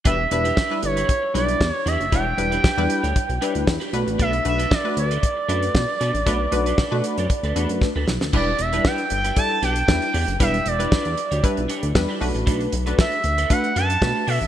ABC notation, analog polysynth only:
X:1
M:4/4
L:1/16
Q:1/4=116
K:Edor
V:1 name="Analog polysynth"
[G,DEB] z [G,DEB] z2 [G,DEB]2 z3 [G,DEB]2 z4 | [G,DEB] z [G,DEB] z2 [G,DEB]2 z3 [G,DEB]2 z2 [A,DFB]2- | [A,DFB] z [A,DFB] z2 [A,DFB]2 z3 [A,DFB]2 z4 | [A,DFB] z [A,DFB] z2 [A,DFB]2 z3 [A,DFB]2 z4 |
[G,DEB] z2 [G,DEB]2 z3 [G,DEA]2 z2 [G,DEB]2 z2 | [G,DEB] z2 [G,DEB]2 z3 [G,DEB]2 z2 [G,DEB]2 [A,DFB]2- | [A,DFB]2 z [A,DFB]2 z3 [A,DFB]2 z2 [A,DFB]2 z2 |]